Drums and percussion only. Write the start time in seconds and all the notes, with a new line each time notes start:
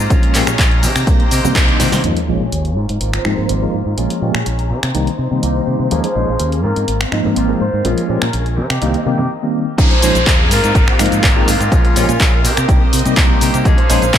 0.10 kick, closed hi-hat, tambourine, high conga, shaker
0.23 closed hi-hat
0.34 clap, open hi-hat, tambourine, shaker
0.47 finger snap, closed hi-hat, tambourine, shaker
0.59 kick, clap, closed hi-hat, shaker
0.71 closed hi-hat
0.83 open hi-hat, tambourine, high conga, shaker
0.96 finger snap, open hi-hat, tambourine, shaker
1.07 kick, closed hi-hat, tambourine, shaker
1.20 closed hi-hat
1.31 open hi-hat, tambourine, shaker
1.44 tambourine, high conga, shaker
1.55 kick, clap, closed hi-hat, shaker
1.68 closed hi-hat
1.79 snare, open hi-hat, tambourine, low conga, shaker
1.92 snare, open hi-hat, tambourine, shaker
2.04 closed hi-hat
2.17 closed hi-hat
2.52 closed hi-hat
2.65 closed hi-hat
2.89 closed hi-hat
3.01 closed hi-hat
3.13 finger snap, closed hi-hat
3.25 finger snap
3.49 closed hi-hat
3.98 closed hi-hat
4.10 closed hi-hat
4.35 finger snap
4.46 closed hi-hat
4.59 closed hi-hat
4.83 finger snap, closed hi-hat
4.95 closed hi-hat
5.07 closed hi-hat
5.43 closed hi-hat
5.91 closed hi-hat, tambourine, high conga
6.04 closed hi-hat
6.16 tambourine
6.28 tambourine
6.40 closed hi-hat
6.52 closed hi-hat
6.64 tambourine, high conga
6.76 closed hi-hat
6.88 closed hi-hat
7.01 finger snap, closed hi-hat
7.12 finger snap
7.25 tambourine, high conga
7.36 closed hi-hat
7.61 tambourine
7.74 tambourine
7.85 closed hi-hat, tambourine, high conga
7.98 closed hi-hat
8.09 tambourine
8.22 finger snap
8.33 closed hi-hat
8.46 closed hi-hat
8.57 tambourine, high conga
8.70 finger snap, closed hi-hat
8.82 closed hi-hat
8.94 closed hi-hat
9.07 tambourine
9.18 tambourine, high conga
9.78 kick, closed hi-hat, shaker
9.91 closed hi-hat
10.02 open hi-hat, shaker
10.15 closed hi-hat, shaker
10.27 kick, clap, closed hi-hat, shaker
10.51 open hi-hat, shaker
10.64 closed hi-hat, shaker
10.75 kick, closed hi-hat, shaker
10.88 finger snap
10.99 finger snap, open hi-hat, shaker
11.06 closed hi-hat
11.12 closed hi-hat, shaker
11.23 kick, clap, closed hi-hat, shaker
11.48 open hi-hat, shaker
11.61 closed hi-hat, shaker
11.72 kick, closed hi-hat, shaker
11.85 closed hi-hat
11.96 open hi-hat, shaker
12.09 closed hi-hat, shaker
12.20 kick, clap, closed hi-hat, shaker
12.45 open hi-hat, shaker
12.57 finger snap, closed hi-hat, shaker
12.69 kick, closed hi-hat, shaker
12.93 open hi-hat, shaker
12.99 closed hi-hat
13.05 closed hi-hat, shaker
13.17 kick, clap, closed hi-hat, shaker
13.41 open hi-hat, shaker
13.54 closed hi-hat, shaker
13.65 kick, closed hi-hat, shaker
13.78 closed hi-hat
13.90 open hi-hat, shaker
14.02 closed hi-hat, shaker
14.14 kick, clap, closed hi-hat, shaker